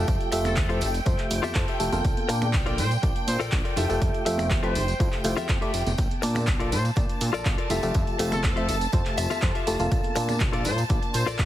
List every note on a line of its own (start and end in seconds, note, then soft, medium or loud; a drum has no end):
0.00 0.29 A3 loud
0.00 0.23 F4 loud
0.00 0.30 F4 medium
0.00 0.23 G4 medium
0.00 0.30 G4 medium
0.00 0.23 A4 medium
0.00 0.30 D5 loud
0.00 0.23 E5 medium
0.00 0.30 E5 medium
0.00 5.99 G5 medium
0.08 0.17 F2 loud
0.08 kick loud
0.08 closed hi-hat medium
0.08 tambourine medium
0.08 tambourine soft
0.21 closed hi-hat soft
0.21 tambourine soft
0.32 0.59 F1 medium
0.32 0.67 A3 medium
0.32 0.67 F4 medium
0.32 0.67 G4 medium
0.32 0.67 C5 loud
0.32 0.67 E5 medium
0.32 muted clean electric guitar stroke loud
0.32 open hi-hat loud
0.32 tambourine medium
0.44 0.94 A4 loud
0.44 finger snap medium
0.44 muted clean electric guitar stroke soft
0.44 closed hi-hat soft
0.44 tambourine soft
0.44 high conga loud
0.56 0.83 F2 medium
0.56 muted clean electric guitar stroke soft
0.56 kick loud
0.56 clap loud
0.56 closed hi-hat medium
0.56 tambourine medium
0.56 tambourine soft
0.69 0.78 A3 medium
0.69 0.79 E4 medium
0.69 0.88 F4 medium
0.69 0.79 F4 medium
0.69 0.88 G4 medium
0.69 0.79 G4 medium
0.69 0.88 A4 medium
0.69 0.79 C5 medium
0.69 0.88 E5 medium
0.69 closed hi-hat soft
0.69 tambourine soft
0.81 1.00 F1 loud
0.81 open hi-hat loud
0.81 tambourine medium
0.94 closed hi-hat soft
0.94 tambourine soft
1.05 1.16 F2 loud
1.05 1.40 A3 medium
1.05 1.40 F4 medium
1.05 1.41 G4 medium
1.05 1.41 C5 loud
1.05 1.40 E5 medium
1.05 muted clean electric guitar stroke soft
1.05 kick loud
1.05 closed hi-hat medium
1.05 tambourine soft
1.18 1.28 F1 soft
1.18 clap soft
1.18 closed hi-hat soft
1.18 tambourine soft
1.31 1.40 F1 medium
1.31 open hi-hat loud
1.31 tambourine loud
1.31 tambourine medium
1.43 1.55 F4 loud
1.43 1.55 G4 loud
1.43 1.55 A4 loud
1.43 1.55 E5 loud
1.43 closed hi-hat soft
1.43 tambourine soft
1.43 high conga medium
1.55 1.65 F2 loud
1.55 1.65 A3 loud
1.55 1.65 E4 medium
1.55 1.65 F4 medium
1.55 1.65 G4 medium
1.55 1.65 C5 loud
1.55 2.01 A5 medium
1.55 kick loud
1.55 clap loud
1.55 closed hi-hat medium
1.55 tambourine soft
1.67 1.98 F4 medium
1.67 1.99 G4 medium
1.67 1.99 A4 medium
1.67 1.99 E5 medium
1.67 closed hi-hat soft
1.67 tambourine soft
1.79 1.90 F1 loud
1.79 1.89 A3 medium
1.79 1.89 E4 medium
1.79 1.90 F4 medium
1.79 1.90 G4 medium
1.79 1.90 A4 loud
1.79 open hi-hat loud
1.79 tambourine medium
1.92 2.02 F1 medium
1.92 2.26 A#3 loud
1.92 2.26 D4 medium
1.92 2.26 F4 medium
1.92 2.26 A4 medium
1.92 2.26 F5 loud
1.92 closed hi-hat soft
1.92 tambourine soft
1.92 high conga loud
2.05 2.14 A#1 loud
2.05 kick loud
2.05 closed hi-hat medium
2.05 tambourine soft
2.17 closed hi-hat soft
2.17 tambourine soft
2.17 high conga medium
2.29 2.55 A#2 medium
2.29 2.63 A#3 medium
2.29 2.63 D4 medium
2.29 2.63 F4 medium
2.29 2.64 D5 loud
2.29 2.64 A5 medium
2.29 muted clean electric guitar stroke loud
2.29 open hi-hat loud
2.29 tambourine medium
2.41 finger snap medium
2.41 muted clean electric guitar stroke soft
2.41 closed hi-hat soft
2.41 tambourine soft
2.41 high conga loud
2.53 2.80 A#1 medium
2.53 muted clean electric guitar stroke soft
2.53 kick loud
2.53 clap loud
2.53 closed hi-hat medium
2.53 tambourine soft
2.53 tambourine medium
2.66 2.75 A#3 medium
2.66 2.75 D4 medium
2.66 2.84 F4 medium
2.66 2.76 F4 medium
2.66 2.85 A4 medium
2.66 2.76 A4 medium
2.66 2.85 A#4 medium
2.66 2.76 D5 medium
2.66 2.85 D5 medium
2.66 closed hi-hat soft
2.66 tambourine soft
2.78 2.97 A#2 loud
2.78 2.92 C5 medium
2.78 open hi-hat loud
2.78 tambourine medium
2.78 low conga medium
2.91 closed hi-hat soft
2.91 tambourine soft
3.02 3.13 A#1 medium
3.02 3.37 A#3 medium
3.02 3.37 D4 medium
3.02 3.37 F4 medium
3.02 3.38 D5 loud
3.02 3.37 A5 medium
3.02 muted clean electric guitar stroke soft
3.02 kick loud
3.02 closed hi-hat medium
3.02 tambourine medium
3.15 closed hi-hat soft
3.15 tambourine soft
3.27 3.37 A#2 medium
3.27 3.41 C5 medium
3.27 open hi-hat loud
3.27 tambourine medium
3.39 3.50 A#1 soft
3.39 3.52 F4 loud
3.39 3.52 A4 loud
3.39 3.52 A#4 loud
3.39 3.52 D5 loud
3.39 closed hi-hat soft
3.39 tambourine soft
3.52 3.62 A#1 loud
3.52 3.62 A#3 medium
3.52 3.62 D4 medium
3.52 3.62 F4 medium
3.52 3.62 A4 medium
3.52 3.62 D5 loud
3.52 kick loud
3.52 clap loud
3.52 closed hi-hat medium
3.52 tambourine medium
3.52 tambourine soft
3.64 3.75 F4 medium
3.64 3.76 A4 medium
3.64 3.77 A#4 medium
3.64 3.77 D5 medium
3.64 closed hi-hat soft
3.64 tambourine soft
3.76 3.86 F1 medium
3.76 3.86 A3 medium
3.76 3.87 E4 medium
3.76 4.16 F4 loud
3.76 3.87 F4 medium
3.76 4.16 G4 medium
3.76 3.87 G4 medium
3.76 4.17 A4 medium
3.76 3.87 A4 loud
3.76 4.17 E5 loud
3.76 open hi-hat loud
3.76 tambourine medium
3.76 low conga medium
3.89 3.99 F1 medium
3.89 4.23 A3 medium
3.89 4.23 F4 medium
3.89 4.23 G4 medium
3.89 4.23 D5 loud
3.89 4.23 E5 medium
3.89 closed hi-hat soft
3.89 tambourine soft
4.02 4.11 F2 loud
4.02 kick loud
4.02 closed hi-hat medium
4.02 tambourine soft
4.14 4.24 F1 soft
4.14 closed hi-hat soft
4.14 tambourine soft
4.25 4.52 F1 medium
4.25 4.60 A3 medium
4.25 4.60 F4 medium
4.25 4.60 G4 medium
4.25 4.61 C5 loud
4.25 4.60 E5 medium
4.25 muted clean electric guitar stroke loud
4.25 open hi-hat loud
4.25 tambourine medium
4.38 finger snap medium
4.38 muted clean electric guitar stroke soft
4.38 closed hi-hat soft
4.38 tambourine soft
4.38 high conga loud
4.50 4.77 F2 medium
4.50 muted clean electric guitar stroke soft
4.50 kick loud
4.50 clap loud
4.50 closed hi-hat medium
4.50 tambourine soft
4.63 4.72 A3 medium
4.63 4.72 E4 medium
4.63 4.81 F4 medium
4.63 4.72 F4 medium
4.63 4.81 G4 medium
4.63 4.72 G4 medium
4.63 4.82 A4 medium
4.63 5.00 C5 medium
4.63 4.72 C5 medium
4.63 4.82 E5 medium
4.63 closed hi-hat soft
4.63 tambourine soft
4.75 4.94 F1 loud
4.75 open hi-hat loud
4.75 tambourine medium
4.75 low conga medium
4.88 closed hi-hat soft
4.88 tambourine soft
4.99 5.09 F2 loud
4.99 5.22 A3 medium
4.99 5.22 E4 medium
4.99 5.22 F4 medium
4.99 5.22 G4 medium
4.99 5.22 C5 loud
4.99 muted clean electric guitar stroke soft
4.99 kick loud
4.99 closed hi-hat medium
4.99 tambourine medium
4.99 tambourine soft
5.12 5.22 F1 soft
5.12 clap soft
5.12 closed hi-hat soft
5.12 tambourine soft
5.24 5.34 F1 loud
5.24 5.34 A3 medium
5.24 5.34 E4 medium
5.24 5.34 F4 medium
5.24 5.34 G4 medium
5.24 5.34 C5 loud
5.24 open hi-hat loud
5.24 tambourine medium
5.37 5.47 F2 soft
5.37 5.49 F4 loud
5.37 5.49 G4 loud
5.37 5.49 A4 loud
5.37 5.49 E5 loud
5.37 closed hi-hat soft
5.37 tambourine soft
5.37 high conga medium
5.49 5.59 F2 loud
5.49 kick loud
5.49 clap loud
5.49 closed hi-hat medium
5.49 tambourine medium
5.61 5.71 A3 loud
5.61 5.71 E4 medium
5.61 5.92 F4 medium
5.61 5.71 F4 medium
5.61 5.92 G4 medium
5.61 5.71 G4 medium
5.61 5.92 A4 medium
5.61 5.71 D5 loud
5.61 5.92 E5 loud
5.61 closed hi-hat soft
5.61 tambourine soft
5.74 5.83 F1 medium
5.74 open hi-hat loud
5.74 tambourine medium
5.86 5.95 F1 medium
5.86 closed hi-hat soft
5.86 tambourine soft
5.86 high conga loud
5.98 6.08 A#1 loud
5.98 11.45 A5 medium
5.98 kick loud
5.98 closed hi-hat medium
5.98 tambourine medium
5.98 tambourine soft
6.10 closed hi-hat soft
6.10 tambourine soft
6.10 high conga medium
6.22 6.49 A#2 medium
6.22 6.57 A#3 medium
6.22 6.57 D4 medium
6.22 6.57 F4 medium
6.22 6.57 D5 loud
6.22 6.57 A5 medium
6.22 muted clean electric guitar stroke loud
6.22 open hi-hat loud
6.22 tambourine medium
6.35 finger snap medium
6.35 muted clean electric guitar stroke soft
6.35 closed hi-hat soft
6.35 tambourine soft
6.35 high conga loud
6.47 6.74 A#1 medium
6.47 muted clean electric guitar stroke soft
6.47 kick loud
6.47 clap loud
6.47 closed hi-hat medium
6.47 tambourine medium
6.47 tambourine soft
6.59 6.69 A#3 medium
6.59 6.69 D4 medium
6.59 6.78 F4 loud
6.59 6.69 F4 medium
6.59 6.78 A4 medium
6.59 6.69 A4 medium
6.59 6.78 A#4 medium
6.59 6.69 D5 medium
6.59 6.79 D5 medium
6.59 closed hi-hat soft
6.59 tambourine soft
6.72 6.91 A#2 loud
6.72 6.86 C5 medium
6.72 open hi-hat loud
6.72 tambourine medium
6.72 low conga medium
6.85 closed hi-hat soft
6.85 tambourine soft
6.96 7.06 A#1 loud
6.96 7.31 A#3 medium
6.96 7.31 D4 medium
6.96 7.31 F4 medium
6.96 7.31 D5 medium
6.96 7.31 A5 medium
6.96 muted clean electric guitar stroke soft
6.96 kick loud
6.96 closed hi-hat medium
6.96 tambourine soft
7.09 closed hi-hat soft
7.09 tambourine soft
7.21 7.31 A#2 medium
7.21 open hi-hat loud
7.21 tambourine medium
7.33 7.43 A#1 soft
7.33 7.45 F4 loud
7.33 7.45 A4 medium
7.33 7.46 A#4 loud
7.33 7.46 D5 loud
7.33 closed hi-hat soft
7.33 tambourine soft
7.45 7.55 A#1 loud
7.45 7.55 A#3 medium
7.45 7.55 D4 medium
7.45 7.55 F4 medium
7.45 7.55 A4 medium
7.45 7.56 D5 loud
7.45 kick loud
7.45 clap loud
7.45 closed hi-hat medium
7.45 tambourine medium
7.58 7.68 F4 medium
7.58 7.69 A4 medium
7.58 7.70 A#4 medium
7.58 7.70 D5 medium
7.58 closed hi-hat soft
7.58 tambourine soft
7.70 7.80 F1 loud
7.70 7.80 A3 medium
7.70 7.80 E4 medium
7.70 8.10 F4 medium
7.70 7.80 F4 medium
7.70 8.10 G4 medium
7.70 7.80 G4 medium
7.70 8.10 A4 medium
7.70 7.80 A4 loud
7.70 8.10 E5 loud
7.70 open hi-hat loud
7.70 tambourine medium
7.70 low conga medium
7.83 7.92 F1 medium
7.83 8.17 A3 medium
7.83 8.17 F4 medium
7.83 8.17 G4 medium
7.83 8.17 D5 loud
7.83 8.17 E5 medium
7.83 closed hi-hat soft
7.83 tambourine soft
7.94 8.04 F2 loud
7.94 kick loud
7.94 closed hi-hat medium
7.94 tambourine medium
7.94 tambourine soft
8.07 closed hi-hat soft
8.07 tambourine soft
8.19 8.46 F1 medium
8.19 8.54 A3 medium
8.19 8.54 F4 medium
8.19 8.54 G4 medium
8.19 8.54 C5 loud
8.19 8.54 E5 medium
8.19 muted clean electric guitar stroke loud
8.19 open hi-hat loud
8.19 tambourine loud
8.19 tambourine medium
8.31 8.81 A4 loud
8.31 finger snap medium
8.31 muted clean electric guitar stroke soft
8.31 closed hi-hat soft
8.31 tambourine soft
8.31 high conga medium
8.43 8.70 F2 medium
8.43 muted clean electric guitar stroke soft
8.43 kick loud
8.43 clap loud
8.43 closed hi-hat medium
8.43 tambourine medium
8.43 tambourine soft
8.56 8.66 A3 medium
8.56 8.66 E4 medium
8.56 8.75 F4 medium
8.56 8.66 F4 medium
8.56 8.75 G4 medium
8.56 8.66 G4 medium
8.56 8.75 A4 medium
8.56 8.66 C5 medium
8.56 8.75 E5 loud
8.56 closed hi-hat soft
8.56 tambourine soft
8.69 8.87 F1 loud
8.69 open hi-hat loud
8.69 tambourine medium
8.81 closed hi-hat soft
8.81 tambourine soft
8.92 9.03 F2 medium
8.92 9.27 A3 medium
8.92 9.28 F4 medium
8.92 9.28 G4 medium
8.92 9.28 C5 loud
8.92 9.27 E5 medium
8.92 muted clean electric guitar stroke soft
8.92 kick loud
8.92 closed hi-hat medium
8.92 tambourine medium
8.92 tambourine soft
9.05 9.15 F1 soft
9.05 clap soft
9.05 closed hi-hat soft
9.05 tambourine soft
9.17 9.27 F1 loud
9.17 9.30 E5 medium
9.17 open hi-hat loud
9.17 tambourine medium
9.30 9.42 F4 loud
9.30 9.42 G4 medium
9.30 9.42 A4 loud
9.30 9.43 E5 loud
9.30 closed hi-hat soft
9.30 tambourine soft
9.30 high conga medium
9.42 9.52 F2 loud
9.42 9.52 A3 medium
9.42 9.52 E4 medium
9.42 9.52 F4 medium
9.42 9.52 G4 medium
9.42 9.52 C5 loud
9.42 kick loud
9.42 clap loud
9.42 closed hi-hat medium
9.42 tambourine medium
9.42 tambourine soft
9.54 9.85 F4 loud
9.54 9.86 G4 medium
9.54 9.86 A4 medium
9.54 9.86 E5 loud
9.54 closed hi-hat soft
9.54 tambourine soft
9.67 9.77 F1 loud
9.67 9.77 A3 medium
9.67 9.77 E4 medium
9.67 9.77 F4 medium
9.67 9.77 G4 medium
9.67 9.77 A4 loud
9.67 open hi-hat loud
9.67 tambourine medium
9.79 9.89 F1 medium
9.79 10.13 A#3 loud
9.79 10.13 D4 medium
9.79 10.13 F4 medium
9.79 10.14 A4 medium
9.79 10.14 F5 loud
9.79 closed hi-hat soft
9.79 tambourine soft
9.79 high conga medium
9.91 kick loud
9.91 closed hi-hat medium
9.91 tambourine medium
9.91 tambourine soft
10.03 closed hi-hat soft
10.03 tambourine soft
10.03 high conga medium
10.15 10.42 A#2 medium
10.15 10.50 A#3 medium
10.15 10.50 D4 medium
10.15 10.50 F4 medium
10.15 10.51 D5 loud
10.15 10.51 A5 medium
10.15 muted clean electric guitar stroke loud
10.15 open hi-hat loud
10.15 tambourine loud
10.15 tambourine medium
10.28 finger snap medium
10.28 muted clean electric guitar stroke soft
10.28 closed hi-hat soft
10.28 tambourine soft
10.28 high conga medium
10.40 10.67 A#1 medium
10.40 muted clean electric guitar stroke soft
10.40 kick loud
10.40 clap loud
10.40 closed hi-hat medium
10.40 tambourine medium
10.52 10.62 A#3 medium
10.52 10.62 D4 medium
10.52 10.71 F4 medium
10.52 10.62 F4 medium
10.52 10.71 A4 medium
10.52 10.62 A4 medium
10.52 10.72 A#4 medium
10.52 10.63 D5 medium
10.52 10.72 D5 loud
10.52 closed hi-hat soft
10.52 tambourine soft
10.65 10.84 A#2 loud
10.65 10.79 C5 medium
10.65 open hi-hat loud
10.65 tambourine medium
10.65 low conga medium
10.78 closed hi-hat soft
10.78 tambourine soft
10.89 10.99 A#1 loud
10.89 11.24 A#3 medium
10.89 11.24 D4 medium
10.89 11.24 F4 medium
10.89 11.24 D5 medium
10.89 11.24 A5 medium
10.89 muted clean electric guitar stroke soft
10.89 kick loud
10.89 closed hi-hat medium
10.89 tambourine medium
10.89 tambourine soft
11.03 closed hi-hat soft
11.03 tambourine soft
11.14 11.24 A#2 medium
11.14 11.28 C5 medium
11.14 open hi-hat loud
11.14 tambourine loud
11.14 tambourine medium
11.26 11.37 A#1 soft
11.26 11.39 F4 loud
11.26 11.39 A4 loud
11.26 11.39 A#4 loud
11.26 11.39 D5 loud
11.26 closed hi-hat soft
11.26 tambourine soft
11.38 11.45 A#1 loud
11.38 11.45 A#3 medium
11.38 11.45 D4 medium
11.38 11.45 F4 medium
11.38 11.45 A4 medium
11.38 11.45 D5 loud
11.38 kick loud
11.38 clap loud
11.38 closed hi-hat medium
11.38 tambourine medium